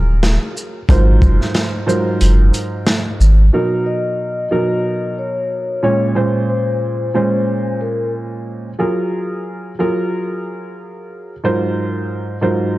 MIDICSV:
0, 0, Header, 1, 5, 480
1, 0, Start_track
1, 0, Tempo, 659341
1, 646, Time_signature, 4, 2, 24, 8
1, 9305, End_track
2, 0, Start_track
2, 0, Title_t, "Vibraphone"
2, 0, Program_c, 0, 11
2, 2812, Note_on_c, 0, 75, 74
2, 3740, Note_off_c, 0, 75, 0
2, 3774, Note_on_c, 0, 73, 70
2, 4461, Note_off_c, 0, 73, 0
2, 4728, Note_on_c, 0, 72, 74
2, 5658, Note_off_c, 0, 72, 0
2, 5686, Note_on_c, 0, 70, 82
2, 5902, Note_off_c, 0, 70, 0
2, 9305, End_track
3, 0, Start_track
3, 0, Title_t, "Upright piano"
3, 0, Program_c, 1, 0
3, 0, Note_on_c, 1, 54, 93
3, 0, Note_on_c, 1, 65, 93
3, 0, Note_on_c, 1, 68, 84
3, 0, Note_on_c, 1, 70, 109
3, 564, Note_off_c, 1, 54, 0
3, 565, Note_off_c, 1, 65, 0
3, 567, Note_off_c, 1, 68, 0
3, 568, Note_off_c, 1, 70, 0
3, 646, Note_on_c, 1, 44, 94
3, 648, Note_on_c, 1, 54, 85
3, 650, Note_on_c, 1, 65, 84
3, 653, Note_on_c, 1, 70, 88
3, 655, Note_on_c, 1, 72, 112
3, 1317, Note_off_c, 1, 44, 0
3, 1318, Note_off_c, 1, 54, 0
3, 1319, Note_off_c, 1, 65, 0
3, 1320, Note_off_c, 1, 70, 0
3, 1321, Note_off_c, 1, 72, 0
3, 1357, Note_on_c, 1, 44, 88
3, 1359, Note_on_c, 1, 54, 88
3, 1362, Note_on_c, 1, 65, 82
3, 1363, Note_on_c, 1, 70, 85
3, 1366, Note_on_c, 1, 72, 102
3, 2479, Note_off_c, 1, 44, 0
3, 2480, Note_off_c, 1, 54, 0
3, 2481, Note_off_c, 1, 65, 0
3, 2482, Note_off_c, 1, 70, 0
3, 2483, Note_off_c, 1, 72, 0
3, 2570, Note_on_c, 1, 47, 86
3, 2573, Note_on_c, 1, 54, 77
3, 2576, Note_on_c, 1, 63, 80
3, 2579, Note_on_c, 1, 70, 92
3, 3238, Note_off_c, 1, 47, 0
3, 3240, Note_off_c, 1, 54, 0
3, 3241, Note_off_c, 1, 63, 0
3, 3243, Note_off_c, 1, 70, 0
3, 3282, Note_on_c, 1, 47, 92
3, 3285, Note_on_c, 1, 54, 77
3, 3288, Note_on_c, 1, 63, 77
3, 3291, Note_on_c, 1, 70, 101
3, 4241, Note_on_c, 1, 46, 90
3, 4244, Note_off_c, 1, 47, 0
3, 4244, Note_on_c, 1, 56, 78
3, 4246, Note_off_c, 1, 54, 0
3, 4247, Note_off_c, 1, 63, 0
3, 4247, Note_on_c, 1, 61, 80
3, 4249, Note_off_c, 1, 70, 0
3, 4250, Note_on_c, 1, 73, 97
3, 4466, Note_off_c, 1, 46, 0
3, 4469, Note_off_c, 1, 56, 0
3, 4470, Note_off_c, 1, 61, 0
3, 4472, Note_off_c, 1, 73, 0
3, 4477, Note_on_c, 1, 46, 91
3, 4480, Note_on_c, 1, 56, 80
3, 4483, Note_on_c, 1, 61, 78
3, 4486, Note_on_c, 1, 72, 96
3, 5152, Note_off_c, 1, 46, 0
3, 5153, Note_off_c, 1, 56, 0
3, 5155, Note_off_c, 1, 61, 0
3, 5156, Note_off_c, 1, 72, 0
3, 5198, Note_on_c, 1, 46, 88
3, 5201, Note_on_c, 1, 56, 86
3, 5204, Note_on_c, 1, 61, 83
3, 5207, Note_on_c, 1, 72, 97
3, 6319, Note_off_c, 1, 46, 0
3, 6321, Note_off_c, 1, 56, 0
3, 6322, Note_off_c, 1, 61, 0
3, 6324, Note_off_c, 1, 72, 0
3, 6397, Note_on_c, 1, 54, 88
3, 6399, Note_on_c, 1, 65, 87
3, 6403, Note_on_c, 1, 68, 81
3, 6405, Note_on_c, 1, 70, 93
3, 7072, Note_off_c, 1, 54, 0
3, 7073, Note_off_c, 1, 65, 0
3, 7075, Note_off_c, 1, 68, 0
3, 7076, Note_off_c, 1, 70, 0
3, 7127, Note_on_c, 1, 54, 87
3, 7130, Note_on_c, 1, 65, 88
3, 7133, Note_on_c, 1, 68, 79
3, 7136, Note_on_c, 1, 70, 102
3, 8244, Note_off_c, 1, 54, 0
3, 8245, Note_off_c, 1, 65, 0
3, 8247, Note_off_c, 1, 68, 0
3, 8248, Note_off_c, 1, 70, 0
3, 8325, Note_on_c, 1, 44, 85
3, 8328, Note_on_c, 1, 54, 78
3, 8330, Note_on_c, 1, 65, 82
3, 8332, Note_on_c, 1, 70, 82
3, 8334, Note_on_c, 1, 72, 110
3, 8996, Note_off_c, 1, 44, 0
3, 8997, Note_off_c, 1, 54, 0
3, 8999, Note_off_c, 1, 65, 0
3, 9000, Note_off_c, 1, 70, 0
3, 9001, Note_off_c, 1, 72, 0
3, 9037, Note_on_c, 1, 44, 86
3, 9039, Note_on_c, 1, 54, 80
3, 9041, Note_on_c, 1, 65, 79
3, 9043, Note_on_c, 1, 70, 82
3, 9045, Note_on_c, 1, 72, 97
3, 9305, Note_off_c, 1, 44, 0
3, 9305, Note_off_c, 1, 54, 0
3, 9305, Note_off_c, 1, 65, 0
3, 9305, Note_off_c, 1, 70, 0
3, 9305, Note_off_c, 1, 72, 0
3, 9305, End_track
4, 0, Start_track
4, 0, Title_t, "Sub bass"
4, 0, Program_c, 2, 38
4, 0, Note_on_c, 2, 27, 89
4, 275, Note_off_c, 2, 27, 0
4, 649, Note_on_c, 2, 32, 112
4, 868, Note_off_c, 2, 32, 0
4, 890, Note_on_c, 2, 30, 89
4, 1013, Note_off_c, 2, 30, 0
4, 1611, Note_on_c, 2, 30, 93
4, 1829, Note_off_c, 2, 30, 0
4, 2331, Note_on_c, 2, 32, 96
4, 2549, Note_off_c, 2, 32, 0
4, 9305, End_track
5, 0, Start_track
5, 0, Title_t, "Drums"
5, 167, Note_on_c, 9, 38, 112
5, 167, Note_on_c, 9, 42, 77
5, 240, Note_off_c, 9, 38, 0
5, 240, Note_off_c, 9, 42, 0
5, 418, Note_on_c, 9, 82, 60
5, 490, Note_off_c, 9, 82, 0
5, 646, Note_on_c, 9, 36, 118
5, 653, Note_on_c, 9, 42, 91
5, 719, Note_off_c, 9, 36, 0
5, 726, Note_off_c, 9, 42, 0
5, 887, Note_on_c, 9, 36, 94
5, 893, Note_on_c, 9, 82, 55
5, 960, Note_off_c, 9, 36, 0
5, 966, Note_off_c, 9, 82, 0
5, 1029, Note_on_c, 9, 38, 39
5, 1102, Note_off_c, 9, 38, 0
5, 1125, Note_on_c, 9, 42, 82
5, 1128, Note_on_c, 9, 38, 125
5, 1198, Note_off_c, 9, 42, 0
5, 1201, Note_off_c, 9, 38, 0
5, 1378, Note_on_c, 9, 82, 62
5, 1451, Note_off_c, 9, 82, 0
5, 1608, Note_on_c, 9, 42, 94
5, 1681, Note_off_c, 9, 42, 0
5, 1850, Note_on_c, 9, 42, 56
5, 1850, Note_on_c, 9, 82, 56
5, 1923, Note_off_c, 9, 42, 0
5, 1923, Note_off_c, 9, 82, 0
5, 2086, Note_on_c, 9, 42, 77
5, 2087, Note_on_c, 9, 38, 111
5, 2159, Note_off_c, 9, 38, 0
5, 2159, Note_off_c, 9, 42, 0
5, 2337, Note_on_c, 9, 82, 59
5, 2410, Note_off_c, 9, 82, 0
5, 9305, End_track
0, 0, End_of_file